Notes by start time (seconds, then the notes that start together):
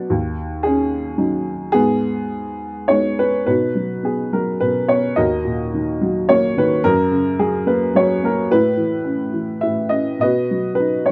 Already playing: B2 F#3 B3 D4 F#4 B4 D5 F#5
0.10 D#2
0.63 C#4 G#4
1.18 F#3 C#4 D#4
1.72 G#2 B3 G#4
2.88 G#3 B3 D#4 C#5
3.19 B4
3.46 B2 D#4 F#4 B4
3.75 F#3
4.03 B3 G#4
4.33 F#3 A#4
4.60 B2 B4
4.88 B3 C#5
5.16 D#2 F#4 A#4 D#5
5.45 A#2
5.74 D#3
6.01 F#3
6.29 A#3 C#5
6.57 D#3 B4
6.84 F#2 C#4 A#4
7.11 C#3
7.39 F#3 G#4
7.66 A#3 B4
7.95 F#3 C#5
8.23 A#3 A#4
8.51 A2 E4 B4
8.77 E3
9.04 C#4
9.34 E3
9.61 A2 E5
9.89 C#4 D#5
10.19 B2 F#4 B4 D#5
10.51 F#3
10.75 B4
10.80 D#4
11.06 C#5